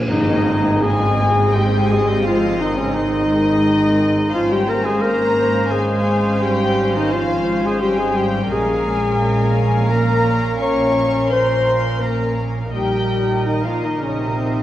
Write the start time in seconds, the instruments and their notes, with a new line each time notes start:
0.06 double bass section G#1, cello section G#2, french horn section D#3, viola section G#3 C4, clarinet D#4, violin section D#5, tam-tam
0.83 french horn section G#3, clarinet G#4, violin section G#5
1.55 clarinet G4, french horn section G4, violin section G5
1.90 french horn section G#3, clarinet G#4, violin section G#5
2.08 french horn section G3, clarinet G4, violin section G5
2.25 french horn section F3, clarinet F4, violin section F5
2.61 french horn section D#3, clarinet D#4, violin section D#5
2.77 french horn section C#3, clarinet C#4, violin section C#5
2.94 french horn section D#3, clarinet D#4, violin section D#5
4.34 double bass section G#1, cello section G#2, french horn section F3, viola section C#4 C5, clarinet F4, violin section F5
4.51 french horn section G3, clarinet G4, violin section G5
4.67 french horn section A#3, clarinet A#4, violin section A#5
4.85 french horn section G#3, clarinet G#4, violin section G#5
5.01 french horn section A#3, clarinet A#4, violin section A#5
5.72 french horn section G#3, clarinet G#4, violin section G#5
6.41 french horn section G3, clarinet G4, violin section G5
6.95 french horn section D#3, clarinet D#4, violin section D#5
7.12 french horn section F3, clarinet F4, violin section F5
7.64 french horn section G#3, clarinet G#4, violin section G#5
7.81 french horn section G3, clarinet G4, violin section G5
7.98 french horn section G#3, clarinet G#4, violin section G#5
8.15 french horn section G3, clarinet G4, violin section G5
8.49 double bass section A#1, cello section A#2, timpani A#2, french horn section G#3, viola section C#4 A#4, clarinet G#4, violin section F5 G#5
9.89 french horn section A#3, clarinet A#4, violin section A#5
10.59 french horn section C#4, clarinet C#5, violin section C#6
11.32 french horn section C5, clarinet C5, violin section C6
12.01 french horn section A#3, clarinet A#4, violin section A#5
12.73 double bass section A#1, cello section A#2, french horn section G3, viola section D#4 A#4, clarinet G4, violin section D#5 G5
13.47 french horn section D#3, clarinet D#4, violin section D#5
13.63 french horn section F3, clarinet F4, violin section F5
13.81 french horn section D#3, clarinet D#4, violin section D#5
13.98 french horn section C#3, clarinet C#4, violin section C#5
14.19 french horn section C3, clarinet C4, violin section C5